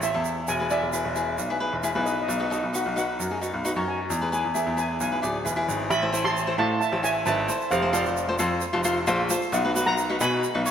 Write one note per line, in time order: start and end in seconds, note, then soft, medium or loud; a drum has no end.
0.00 0.13 A1 medium
0.00 0.09 E4 medium
0.00 0.09 A4 medium
0.00 0.10 C5 medium
0.00 0.49 E5 medium
0.00 shaker medium
0.14 0.46 E2 medium
0.14 0.41 E4 medium
0.14 0.41 A4 medium
0.14 0.41 C5 medium
0.25 shaker medium
0.48 0.80 E1 medium
0.48 0.71 G#5 loud
0.48 shaker medium
0.60 0.66 E4 medium
0.60 0.66 G#4 medium
0.60 0.66 B4 medium
0.70 0.84 E4 medium
0.70 0.84 G#4 medium
0.70 0.84 D5 medium
0.70 2.11 E5 medium
0.70 shaker medium
0.83 1.03 E1 medium
0.93 1.07 E4 medium
0.93 1.07 G#4 medium
0.93 1.07 B4 medium
0.93 shaker medium
1.05 1.36 E1 medium
1.15 1.36 E4 medium
1.15 1.36 G#4 soft
1.15 1.36 B4 medium
1.15 shaker medium
1.38 1.70 B1 medium
1.38 shaker medium
1.50 1.56 E4 medium
1.50 1.57 G#4 medium
1.50 1.57 B4 medium
1.60 1.75 E4 medium
1.60 1.75 G#4 medium
1.60 1.75 B4 medium
1.73 1.94 E1 medium
1.83 1.91 E4 medium
1.83 1.91 G#4 medium
1.83 1.91 B4 medium
1.83 shaker medium
1.95 2.27 B1 medium
1.95 2.22 E4 medium
1.95 2.22 G#4 medium
1.95 2.22 B4 medium
2.06 2.13 D#5 medium
2.06 shaker medium
2.15 2.21 D#5 medium
2.22 2.28 D#5 medium
2.29 2.61 B1 loud
2.29 2.36 D#5 medium
2.29 shaker medium
2.37 2.47 D#4 medium
2.37 2.47 F#4 medium
2.37 2.47 B4 medium
2.37 2.44 D#5 medium
2.45 2.51 D#5 soft
2.50 2.65 D#4 medium
2.50 2.65 F#4 medium
2.50 2.65 A4 medium
2.50 2.59 D#5 medium
2.50 shaker medium
2.60 2.84 B1 medium
2.60 2.67 D#5 medium
2.73 2.88 D#4 medium
2.73 2.88 F#4 medium
2.73 2.88 B4 medium
2.73 2.97 F#5 medium
2.73 shaker medium
2.86 3.17 B1 medium
2.96 3.17 D#4 medium
2.96 3.17 F#4 soft
2.96 3.17 B4 medium
2.96 3.91 F#5 medium
2.96 shaker medium
3.19 3.52 F#2 medium
3.19 shaker medium
3.31 3.38 D#4 medium
3.31 3.38 F#4 medium
3.31 3.38 G#4 medium
3.41 3.56 D#4 medium
3.41 3.56 F#4 medium
3.41 3.56 B4 medium
3.41 shaker medium
3.54 3.75 B1 medium
3.65 3.72 D#4 medium
3.65 3.72 F#4 medium
3.65 3.72 B4 medium
3.65 shaker medium
3.76 4.08 F#2 medium
3.76 4.03 D#4 medium
3.76 4.04 F#4 medium
3.76 4.04 C#5 medium
3.88 4.32 G#5 medium
4.10 4.42 E2 loud
4.10 shaker medium
4.21 4.28 E4 medium
4.21 4.28 G#4 medium
4.21 4.28 B4 medium
4.32 4.46 E4 medium
4.32 4.46 G#4 medium
4.32 4.46 B4 medium
4.32 4.56 G#5 medium
4.32 shaker medium
4.45 4.65 E2 medium
4.54 4.69 E4 medium
4.54 4.69 G#4 medium
4.54 4.69 B4 medium
4.54 4.79 E5 medium
4.54 shaker medium
4.67 4.98 E2 medium
4.77 4.98 E4 medium
4.77 4.98 G#4 soft
4.77 4.98 B4 medium
4.77 5.00 G#5 medium
4.77 shaker medium
5.00 5.22 B1 medium
5.00 5.65 G#5 medium
5.00 shaker medium
5.12 5.19 E4 medium
5.12 5.19 G#4 medium
5.12 5.19 B4 medium
5.22 5.44 D1 medium
5.22 5.37 E4 medium
5.22 5.37 G#4 soft
5.22 5.37 D5 medium
5.22 shaker medium
5.45 5.66 E1 medium
5.45 5.52 E4 medium
5.45 5.53 G#4 medium
5.45 5.53 B4 medium
5.45 shaker medium
5.56 5.84 E4 medium
5.56 5.84 G#4 medium
5.56 5.84 B4 medium
5.68 5.89 G#1 medium
5.68 shaker medium
5.90 6.23 A1 loud
5.90 6.23 E5 medium
5.90 6.26 B5 loud
5.90 shaker medium
6.02 6.09 E4 medium
6.02 6.09 A4 medium
6.02 6.09 C5 medium
6.12 6.34 E4 medium
6.12 6.33 A4 medium
6.12 6.34 C5 medium
6.12 shaker medium
6.24 6.57 A1 medium
6.24 6.57 A5 medium
6.24 6.60 C6 loud
6.24 shaker soft
6.37 shaker medium
6.47 6.54 E4 medium
6.47 6.54 A4 medium
6.47 6.54 C5 medium
6.58 6.80 A2 medium
6.58 6.79 E4 medium
6.58 6.79 A4 medium
6.58 6.79 C5 medium
6.58 6.80 F5 medium
6.58 6.79 A5 loud
6.80 7.03 E5 medium
6.80 7.04 A5 loud
6.80 shaker medium
6.92 7.24 A1 medium
6.92 6.99 E4 medium
6.92 6.99 A4 medium
6.92 6.99 C5 medium
7.03 7.17 E4 medium
7.03 7.18 A4 medium
7.03 7.18 B4 medium
7.03 7.15 E5 medium
7.03 7.14 G#5 loud
7.03 shaker medium
7.25 7.47 G#1 loud
7.25 7.40 E4 medium
7.25 7.40 A4 medium
7.25 7.40 B4 medium
7.25 7.69 E5 medium
7.25 7.73 A5 loud
7.25 shaker medium
7.49 7.69 E4 medium
7.49 7.69 A4 medium
7.49 7.69 C5 medium
7.49 shaker medium
7.61 shaker soft
7.71 8.04 F1 loud
7.71 7.93 C5 medium
7.71 7.92 F5 loud
7.71 shaker medium
7.82 7.90 F4 medium
7.82 7.90 A4 medium
7.82 7.90 C5 medium
7.93 8.14 F4 medium
7.93 8.14 A4 medium
7.93 8.14 C5 medium
7.93 9.26 D5 medium
7.93 9.25 F5 medium
7.93 shaker medium
8.06 8.38 F1 medium
8.06 shaker soft
8.17 shaker medium
8.29 8.35 F4 medium
8.29 8.35 A4 medium
8.29 8.35 C5 medium
8.39 8.61 F2 medium
8.39 8.60 F4 medium
8.39 8.60 A4 medium
8.39 8.60 C5 medium
8.39 shaker loud
8.61 shaker medium
8.73 9.06 F1 medium
8.73 8.80 F4 medium
8.73 8.80 A4 medium
8.73 8.80 C5 medium
8.84 8.99 F4 loud
8.84 8.98 A4 medium
8.84 8.99 C5 loud
8.84 shaker medium
9.07 9.29 A#1 loud
9.07 9.21 F4 loud
9.07 9.21 A4 medium
9.07 9.21 C5 medium
9.07 shaker medium
9.30 9.50 F4 medium
9.30 9.50 A4 medium
9.30 9.50 C5 medium
9.30 shaker loud
9.42 shaker soft
9.52 9.85 B1 loud
9.52 9.85 D#5 medium
9.52 9.86 F#5 medium
9.52 shaker medium
9.65 9.71 D#4 medium
9.65 9.71 F#4 medium
9.65 9.71 B4 medium
9.76 9.96 D#4 medium
9.76 9.96 F#4 medium
9.76 9.96 B4 medium
9.76 shaker loud
9.86 10.18 B1 medium
9.86 10.18 F#5 medium
9.86 10.18 A#5 loud
9.86 shaker soft
9.98 shaker medium
10.09 10.16 D#4 medium
10.09 10.16 F#4 medium
10.09 10.16 B4 medium
10.20 10.42 B2 medium
10.20 10.41 D#4 medium
10.20 10.41 F#4 medium
10.20 10.41 B4 medium
10.20 10.63 G#5 medium
10.20 10.63 B5 loud
10.20 shaker medium
10.44 shaker medium
10.54 10.71 B1 medium
10.54 10.61 D#4 medium
10.54 10.61 F#4 medium
10.54 10.61 B4 medium
10.65 10.71 D#4 medium
10.65 10.71 F#4 medium
10.65 10.71 C#5 medium
10.65 shaker loud